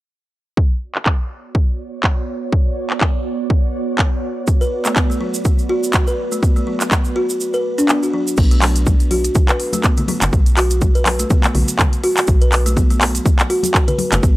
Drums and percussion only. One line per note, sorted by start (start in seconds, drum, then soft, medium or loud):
0.57 kick loud
0.95 clap medium
1.06 kick medium
1.06 clap medium
1.55 kick loud
2.04 kick medium
2.04 clap loud
2.52 kick loud
2.90 clap medium
3.01 kick loud
3.01 clap loud
3.50 kick loud
3.99 kick loud
3.99 clap loud
4.47 kick loud
4.47 shaker medium
4.62 shaker soft
4.85 clap medium
4.85 shaker medium
4.96 kick loud
4.96 clap loud
4.96 shaker medium
5.11 shaker soft
5.34 shaker medium
5.45 kick loud
5.45 shaker medium
5.59 shaker soft
5.83 shaker medium
5.93 kick loud
5.93 clap loud
5.93 shaker medium
6.07 shaker soft
6.32 shaker medium
6.43 kick loud
6.43 shaker medium
6.56 shaker soft
6.81 clap medium
6.81 shaker medium
6.91 kick loud
6.91 clap loud
6.91 shaker medium
7.04 shaker soft
7.29 shaker medium
7.40 shaker medium
7.54 shaker soft
7.79 shaker medium
7.89 clap loud
7.89 shaker medium
8.03 shaker soft
8.27 shaker medium
8.37 kick loud
8.37 crash medium
8.37 shaker medium
8.51 closed hi-hat soft
8.51 shaker soft
8.62 clap medium
8.62 open hi-hat medium
8.76 closed hi-hat medium
8.76 shaker medium
8.86 kick loud
8.86 high conga medium
8.86 shaker medium
9.00 closed hi-hat soft
9.00 shaker soft
9.11 open hi-hat medium
9.11 high conga medium
9.24 closed hi-hat medium
9.24 shaker medium
9.35 kick loud
9.35 high conga medium
9.35 shaker medium
9.49 clap medium
9.49 closed hi-hat soft
9.49 shaker soft
9.60 open hi-hat medium
9.73 closed hi-hat medium
9.73 high conga medium
9.73 shaker medium
9.84 kick loud
9.84 clap medium
9.84 shaker medium
9.97 closed hi-hat soft
9.97 low conga medium
9.97 shaker soft
10.08 open hi-hat medium
10.08 high conga loud
10.22 clap medium
10.22 closed hi-hat medium
10.22 low conga loud
10.22 shaker medium
10.33 kick loud
10.33 shaker medium
10.46 closed hi-hat soft
10.46 shaker soft
10.57 clap medium
10.57 open hi-hat medium
10.70 closed hi-hat medium
10.70 shaker medium
10.81 kick loud
10.81 high conga medium
10.81 shaker medium
10.95 closed hi-hat soft
10.95 shaker soft
11.06 clap medium
11.06 open hi-hat medium
11.06 high conga medium
11.19 closed hi-hat medium
11.19 shaker medium
11.30 kick loud
11.30 high conga loud
11.30 low conga medium
11.30 shaker medium
11.44 clap medium
11.44 closed hi-hat soft
11.44 shaker soft
11.55 open hi-hat medium
11.55 low conga loud
11.68 closed hi-hat medium
11.68 shaker medium
11.79 kick loud
11.79 clap medium
11.79 high conga medium
11.79 low conga loud
11.79 shaker medium
11.93 closed hi-hat soft
11.93 shaker soft
12.04 open hi-hat medium
12.17 clap medium
12.17 open hi-hat medium
12.17 shaker medium
12.27 kick loud
12.27 shaker medium
12.41 closed hi-hat soft
12.41 shaker soft
12.52 clap medium
12.52 open hi-hat medium
12.66 closed hi-hat medium
12.66 shaker medium
12.76 kick loud
12.76 high conga medium
12.76 shaker medium
12.90 closed hi-hat soft
12.90 shaker soft
13.01 clap medium
13.01 open hi-hat medium
13.01 high conga medium
13.15 closed hi-hat medium
13.15 shaker medium
13.26 kick loud
13.26 high conga loud
13.26 shaker medium
13.39 clap medium
13.39 closed hi-hat soft
13.39 shaker soft
13.50 open hi-hat medium
13.63 closed hi-hat medium
13.63 high conga medium
13.63 shaker medium
13.74 kick loud
13.74 clap medium
13.74 shaker medium
13.88 closed hi-hat soft
13.88 low conga medium
13.88 shaker soft
13.98 open hi-hat medium
13.98 high conga loud
14.12 clap medium
14.12 closed hi-hat medium
14.12 low conga medium
14.12 shaker medium
14.23 kick loud
14.23 shaker medium